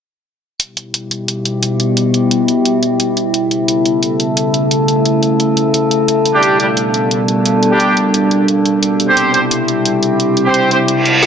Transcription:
0.60 B2 G3 E4 G4, closed hi-hat
0.77 closed hi-hat
0.94 closed hi-hat
1.11 closed hi-hat
1.28 closed hi-hat
1.45 closed hi-hat
1.63 closed hi-hat
1.80 closed hi-hat
1.97 closed hi-hat
2.14 closed hi-hat
2.31 closed hi-hat
2.48 closed hi-hat
2.65 closed hi-hat
2.83 closed hi-hat
3.00 closed hi-hat
3.17 closed hi-hat
3.34 C#3 A3 A4, closed hi-hat
3.51 closed hi-hat
3.68 closed hi-hat
3.85 closed hi-hat
4.03 closed hi-hat
4.20 closed hi-hat
4.37 closed hi-hat
4.54 closed hi-hat
4.71 closed hi-hat
4.88 closed hi-hat
5.06 closed hi-hat
5.23 closed hi-hat
5.40 closed hi-hat
5.57 closed hi-hat
5.74 closed hi-hat
5.91 closed hi-hat
6.08 B2 G3 D4, closed hi-hat
6.26 closed hi-hat
6.34 G3 D4 G4
6.43 closed hi-hat
6.60 G3 D4 G4, closed hi-hat
6.77 closed hi-hat
6.94 closed hi-hat
7.11 closed hi-hat
7.28 closed hi-hat
7.46 closed hi-hat
7.63 closed hi-hat
7.71 G3 D4 G4
7.80 closed hi-hat
7.97 closed hi-hat
8.14 closed hi-hat
8.31 closed hi-hat
8.48 closed hi-hat
8.66 closed hi-hat
8.83 C3 E4 G4, closed hi-hat
9.00 closed hi-hat
9.08 C4 G4 C5
9.17 closed hi-hat
9.34 C4 G4 C5, closed hi-hat
9.51 closed hi-hat
9.68 closed hi-hat
9.86 closed hi-hat
10.03 closed hi-hat
10.20 closed hi-hat
10.37 closed hi-hat
10.45 C4 G4 C5
10.54 closed hi-hat
10.71 C4 G4 C5, closed hi-hat
10.88 closed hi-hat, reverse cymbal
11.06 closed hi-hat
11.23 snare, closed hi-hat

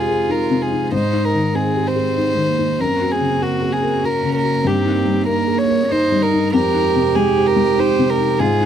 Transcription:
Already playing: F2 C3 G#3 D#4 F4 G4 G#4 C5
0.09 G#4
0.29 D#4 A#4
0.50 C3
0.62 G#4
0.72 D#4
0.92 G#2 D#4 C5
1.13 D#4
1.25 A#4
1.34 D#3
1.54 C4 G#4
1.75 G4
1.87 C5
1.96 G#4
2.17 D#4
2.33 D#3 G#3
2.48 A#3
2.59 D#4
2.78 F#2 A#3 C4 F#4 A#4
3.01 F#4
3.11 G#4
3.20 C#3
3.40 F#4 A#4
3.62 G#4
3.73 G#4
3.83 A#4
4.03 C#4 F#4 A#4
4.23 C#3
4.35 A#4
4.43 F#4
4.62 G2 C4 D#4
4.67 G4
4.85 D#4
5.05 G3
5.26 A#3 A#4
5.47 G#4
5.58 C#5
5.69 A#4
5.90 D#4 C5
6.12 G3
6.22 A#4
6.33 D#4
6.51 F2 G#3 G4 A#4 C5
6.74 D#4
6.95 C3
7.15 G#3 G#4
7.36 G4
7.47 A#4
7.56 G#3
7.78 D#4 C5
7.99 C3
8.10 A#4
8.18 D#4
8.39 G#2 F4 G#4
8.60 D#4

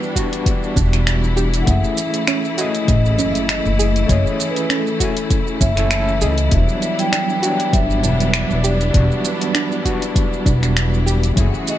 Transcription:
Already playing: E3 G3 B3 D4 E4 F#4 B4
0.03 shaker
0.13 G3 B3 F#4, kick, closed hi-hat, shaker
0.17 D4 F#4
0.33 closed hi-hat, shaker
0.46 kick, closed hi-hat, shaker
0.63 shaker
0.76 E1 D4, kick, closed hi-hat, shaker
0.93 finger snap, closed hi-hat, shaker
1.07 finger snap, closed hi-hat, shaker
1.24 shaker
1.37 G4, closed hi-hat, shaker
1.54 closed hi-hat, shaker
1.62 A3 F#5
1.66 F#1 A3 C#4 E4 E5, kick, closed hi-hat, shaker
1.70 G#4
1.84 shaker
1.97 closed hi-hat, shaker
2.14 closed hi-hat, shaker
2.27 C#4, finger snap, closed hi-hat, shaker
2.45 shaker
2.54 A3 C#4 F#4, closed hi-hat
2.58 E4 G#4 D#5, shaker
2.75 closed hi-hat, shaker
2.88 A1 D#5, kick, closed hi-hat, shaker
3.06 shaker
3.18 F#1 C#4, closed hi-hat, shaker
3.29 E5
3.35 closed hi-hat, shaker
3.49 D#5, finger snap, closed hi-hat, shaker
3.65 F#1, shaker
3.79 G#4, closed hi-hat, shaker
3.96 closed hi-hat, shaker
4.04 A3 C#4 D#5
4.09 F#1 E4 G#4 C#5, kick, closed hi-hat, shaker
4.27 shaker
4.40 closed hi-hat, shaker
4.50 B4
4.56 closed hi-hat, shaker
4.70 C#4 A4, finger snap, closed hi-hat, shaker
4.87 shaker
4.97 A3 C#4 F#4, kick, closed hi-hat
5.01 E4 G#5, shaker
5.17 closed hi-hat, shaker
5.30 kick, closed hi-hat, shaker
5.47 shaker
5.61 F#1 C#4 E5, kick, closed hi-hat, shaker
5.76 A3 C#4 E4 A4, finger snap, closed hi-hat, shaker
5.90 A3 C#4 E4 A4, finger snap, closed hi-hat, shaker
6.08 shaker
6.21 C#2 G#4 D#5, closed hi-hat, shaker
6.38 closed hi-hat, shaker
6.49 E1 G3 B3 D4 E5, kick, closed hi-hat, shaker
6.53 F#3 D4
6.69 shaker
6.82 closed hi-hat, shaker
6.99 G5, closed hi-hat, shaker
7.12 D4, finger snap, closed hi-hat, shaker
7.30 shaker
7.40 G3 B3 F#4 G5, closed hi-hat, shaker
7.44 F#3 D4
7.60 closed hi-hat, shaker
7.73 G1 E5, kick, closed hi-hat, shaker
7.91 shaker
8.03 E1 D4, closed hi-hat, shaker
8.20 closed hi-hat, shaker
8.34 finger snap, closed hi-hat, shaker
8.51 E1, shaker
8.64 G4 D5, closed hi-hat, shaker
8.81 closed hi-hat, shaker
8.90 E1 G3 B3, kick, closed hi-hat
8.95 D4 F#4, shaker
9.11 shaker
9.25 closed hi-hat, shaker
9.41 closed hi-hat, shaker
9.55 D4, finger snap, closed hi-hat, shaker
9.72 shaker
9.81 G3 B3 F#4, kick
9.86 D4 F#4, closed hi-hat, shaker
10.02 closed hi-hat, shaker
10.16 kick, closed hi-hat, shaker
10.33 shaker
10.46 E1 D4, kick, closed hi-hat, shaker
10.63 finger snap, closed hi-hat, shaker
10.77 finger snap, closed hi-hat, shaker
10.94 shaker
11.06 G4, closed hi-hat, shaker
11.23 closed hi-hat, shaker
11.33 F#1 E3 A3 C#4 F#4 G#4, kick, closed hi-hat
11.37 E4 G#4, shaker
11.54 shaker
11.67 D#5, closed hi-hat, shaker

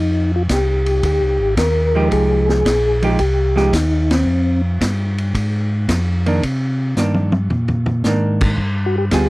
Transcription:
Already playing: F2 D#4
0.36 F4
0.49 C2 G4, kick, snare, hi-hat pedal, ride
0.86 ride
1.03 D2 G4, kick, ride
1.21 C2
1.40 G#1
1.57 D#2 A#4, kick, snare, hi-hat pedal, ride
1.95 F3 G#3 D#4 G4
2.11 C2 G#4, kick, ride
2.49 G#4, snare
2.65 A#1, kick, snare, hi-hat pedal, ride
3.02 F3 G#3 D#4 G4, ride
3.19 C2 G4, kick, ride
3.56 F3 G#3 D#4 G4, snare
3.73 D#2 D#4, kick, snare, hi-hat pedal, ride
4.11 C4, snare, ride
4.26 F2
4.81 G2, kick, snare, hi-hat pedal, ride
5.18 ride
5.34 G#2, kick, ride
5.88 F2, kick, snare, hi-hat pedal, ride
6.26 D#3 A#3 D4, ride
6.43 C3, kick, ride
6.96 G2 D#3 A#3 D4, snare, hi-hat pedal
7.14 high tom
7.32 high tom
7.50 A#2, floor tom
7.68 floor tom
7.86 floor tom
8.04 G#2 D#3 A#3 D4, snare, hi-hat pedal
8.41 kick, crash
8.57 G2, kick
8.86 F#4
8.98 G4
9.11 D2 G3 B3 F4 G4 G#4, kick, snare, hi-hat pedal, ride

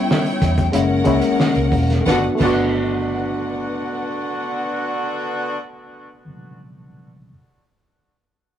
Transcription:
Already playing: G3 B3 C#4 E4 C#5 G5
0.11 snare
0.26 closed hi-hat
0.42 E2, kick, closed hi-hat
0.58 kick, closed hi-hat
0.72 F#1 G#3 A#3 C#4 E4 A#4 F#5, closed hi-hat
1.04 C#2 G#3 A#3 C#4 E4, kick, closed hi-hat
1.21 closed hi-hat
1.40 snare
1.55 C#2, closed hi-hat
1.72 E1, kick, open hi-hat
1.90 snare, closed hi-hat
2.01 A3 B3
2.06 G1 D3 B3 D4 F#4 B4 F#5, kick, snare
2.12 F#4
2.35 A3 B3
2.39 G1 D3 B3 D4 F#4 B4 F#5, kick, crash
2.46 F#4

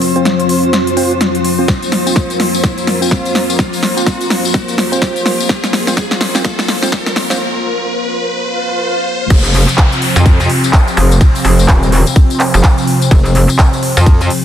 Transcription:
Already playing: F2 F3 C4 F4 C5 C6, riser
0.02 open hi-hat
0.16 C4 F4 C5, closed hi-hat
0.25 snare, closed hi-hat
0.40 closed hi-hat
0.49 open hi-hat
0.63 closed hi-hat
0.73 snare, closed hi-hat
0.87 closed hi-hat
0.97 C4 F4 C5, open hi-hat
1.11 closed hi-hat
1.21 snare, closed hi-hat
1.35 closed hi-hat
1.45 open hi-hat
1.59 C4 F4 C5
1.68 A#3, kick, snare, closed hi-hat, tambourine
1.82 closed hi-hat, tambourine
1.92 snare, open hi-hat
2.06 C4 F4 C5, closed hi-hat, tambourine
2.16 kick, snare, closed hi-hat
2.30 closed hi-hat, tambourine
2.40 snare, open hi-hat
2.54 tambourine
2.64 kick, snare, closed hi-hat, tambourine
2.78 closed hi-hat, tambourine
2.87 snare, open hi-hat
3.01 C4 F4 C5, tambourine
3.11 kick, snare, closed hi-hat
3.25 closed hi-hat, tambourine
3.35 snare, open hi-hat
3.50 tambourine
3.59 kick, snare, closed hi-hat, tambourine
3.73 open hi-hat, tambourine
3.83 snare, open hi-hat
3.97 C4 F4 C5, closed hi-hat, tambourine
4.06 kick, snare, closed hi-hat, tambourine
4.21 closed hi-hat, tambourine
4.30 snare, open hi-hat
4.45 closed hi-hat, tambourine
4.54 kick, snare, closed hi-hat
4.68 closed hi-hat, tambourine
4.78 snare, open hi-hat
4.92 C4 F4 C5, closed hi-hat, tambourine
5.02 kick, snare, closed hi-hat, tambourine
5.16 closed hi-hat, tambourine
5.26 snare, open hi-hat
5.40 tambourine
5.49 kick, snare, closed hi-hat, tambourine
5.64 snare, closed hi-hat, tambourine
5.73 snare, open hi-hat
5.87 C4 F4 C5, snare, tambourine
5.97 kick, snare, closed hi-hat, tambourine
6.11 snare, closed hi-hat, tambourine
6.21 snare, open hi-hat
6.35 C4 F4 C5, snare, tambourine
6.45 kick, snare, closed hi-hat, tambourine
6.59 snare, closed hi-hat, tambourine
6.68 snare, open hi-hat
6.83 C4 F4 C5, snare, tambourine
6.92 kick, snare, closed hi-hat
7.06 snare, closed hi-hat, tambourine
7.16 snare, open hi-hat
7.30 C4 F4 C5, snare, tambourine
8.35 swell
9.30 F1 C3 F3 C4, kick, closed hi-hat, crash, ride, tambourine, downlifter
9.45 closed hi-hat, tambourine
9.54 open hi-hat
9.68 closed hi-hat, tambourine
9.78 kick, clap, closed hi-hat, ride
9.92 closed hi-hat, tambourine
10.02 open hi-hat
10.16 F2, closed hi-hat, tambourine
10.26 kick, closed hi-hat, ride, tambourine
10.40 closed hi-hat, tambourine
10.50 open hi-hat
10.64 closed hi-hat, tambourine
10.73 kick, clap, closed hi-hat, ride
10.88 closed hi-hat, tambourine
10.97 F1, open hi-hat
11.11 closed hi-hat, tambourine
11.21 kick, closed hi-hat, ride, tambourine
11.35 open hi-hat, tambourine
11.45 F1, open hi-hat
11.59 closed hi-hat, tambourine
11.68 D#1, kick, clap, closed hi-hat, ride
11.83 closed hi-hat, tambourine
11.92 open hi-hat
12.07 closed hi-hat, tambourine
12.16 kick, closed hi-hat, ride, tambourine
12.30 closed hi-hat, tambourine
12.40 clap, open hi-hat
12.54 F1, closed hi-hat, tambourine
12.64 kick, clap, closed hi-hat, ride
12.78 closed hi-hat, tambourine
12.87 open hi-hat
13.02 closed hi-hat, tambourine
13.11 F1, kick, closed hi-hat, ride, tambourine
13.25 closed hi-hat, tambourine
13.35 open hi-hat
13.49 closed hi-hat, tambourine
13.59 kick, clap, closed hi-hat, ride
13.73 closed hi-hat, tambourine
13.83 open hi-hat
13.97 F2, closed hi-hat, tambourine
14.06 kick, closed hi-hat, ride, tambourine
14.21 closed hi-hat, tambourine
14.30 open hi-hat

